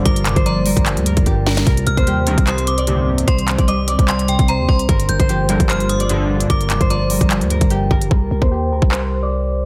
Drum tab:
HH |xxxxx-oxxxxxx--x|xxxxx-xxxxxxx--x|xxxxx-xxxxxxx--x|xxxxx-xxxxxxx--x|
CP |--x-----x-------|--------x-------|--x-----x-------|--------x-------|
SD |--------------oo|----------------|----------------|----------------|
BD |o--o---o---oo---|o--o---o--------|o--o---o---o--o-|o--o---o--------|

HH |xxxxx-oxxxxxx--x|----------------|
CP |--x-----x-------|--------x-------|
SD |----------------|----------------|
BD |o--o---o---o--o-|o--o---o--------|